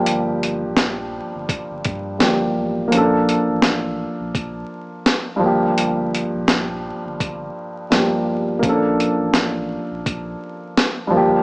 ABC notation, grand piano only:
X:1
M:4/4
L:1/8
Q:"Swing 16ths" 1/4=84
K:Bb
V:1 name="Grand piano"
[G,,F,B,G]6 [G,,F,B,G]2 | [F,B,^CDA]6- [F,B,CDA] [G,,F,B,G]- | [G,,F,B,G]6 [G,,F,B,G]2 | [F,B,^CDA]6- [F,B,CDA] [G,,F,B,G] |]